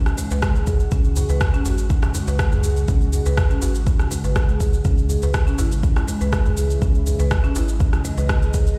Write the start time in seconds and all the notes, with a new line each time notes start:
Already playing: C#3 E3 G#3 F#4
0.06 C#2, cross-stick, cabasa
0.17 G#3, djembe tone, cabasa
0.31 C#2 B4, djembe slap, cabasa
0.42 kick, cross-stick, djembe slap, djembe tone, cabasa
0.55 C#2 G#4, cabasa
0.67 G#4, kick, djembe tone, cabasa
0.80 cabasa
0.91 C#2 C#3 C#4, kick, djembe tone, cabasa
1.04 cabasa
1.16 G#4, djembe tone, cabasa
1.29 C#2 B4, djembe slap, cabasa
1.41 kick, cross-stick, djembe tone, djembe bass, cabasa
1.54 C#4, cabasa
1.65 G#1 F#4, djembe slap, djembe tone, cabasa
1.78 cabasa
1.89 C#4, kick, djembe tone, cabasa
2.02 C#2, cross-stick, djembe slap, cabasa
2.14 G#3, djembe tone, cabasa
2.28 C#2 B4, djembe slap, cabasa
2.39 kick, cross-stick, djembe tone, cabasa
2.52 C#2 G#4, djembe bass, cabasa
2.63 G#4, djembe tone, cabasa
2.77 cabasa
2.88 C#2 C#4, kick, djembe tone, cabasa
3.01 cabasa
3.13 G#4, djembe tone, cabasa
3.26 C#2 B4, djembe slap, cabasa
3.37 kick, cross-stick, djembe tone, djembe bass, cabasa
3.50 C#4, cabasa
3.62 G#1 F#4, djembe slap, djembe tone, cabasa
3.75 cabasa
3.86 C#4, kick, djembe tone, cabasa
3.99 C#2, cross-stick, cabasa
4.11 G#3, djembe tone, cabasa
4.24 G#1 B4, djembe slap, cabasa
4.35 kick, cross-stick, djembe slap, djembe tone, cabasa
4.49 C#2 G#4, cabasa
4.60 G#4, kick, djembe tone, cabasa
4.73 cabasa
4.85 C#2 E3 C#4 E4, kick, djembe tone, cabasa
4.98 cabasa
5.09 G#4, djembe tone, cabasa
5.22 C#2 B4, djembe slap, cabasa
5.33 kick, cross-stick, djembe tone, djembe bass, cabasa
5.47 C#4, cabasa
5.58 G#1 E4, djembe slap, djembe tone, cabasa
5.72 cabasa
5.83 C#4, kick, djembe tone, cabasa
5.96 C#2, cross-stick, djembe slap, cabasa
6.07 G#3, djembe tone, cabasa
6.21 C#2 B4, djembe slap, cabasa
6.33 kick, cross-stick, djembe tone, cabasa
6.45 C#2 G#4, djembe bass, cabasa
6.57 G#4, djembe tone, cabasa
6.70 cabasa
6.82 C#2 C#4 D#5, kick, djembe tone, cabasa
6.95 cabasa
7.06 G#4, djembe tone, cabasa
7.19 C#2 B4, djembe slap, cabasa
7.31 kick, cross-stick, djembe tone, djembe bass, cabasa
7.44 C#4, cabasa
7.55 G#1 E4, djembe slap, djembe tone, cabasa
7.68 cabasa
7.80 C#4, kick, djembe tone, cabasa
7.93 C#2, cross-stick, cabasa
8.05 G#3, djembe tone, cabasa
8.18 C#2 B4, djembe slap, cabasa
8.29 kick, cross-stick, djembe slap, djembe tone, cabasa
8.42 C#2 G#4, cabasa
8.54 G#4, kick, djembe tone, cabasa
8.67 cabasa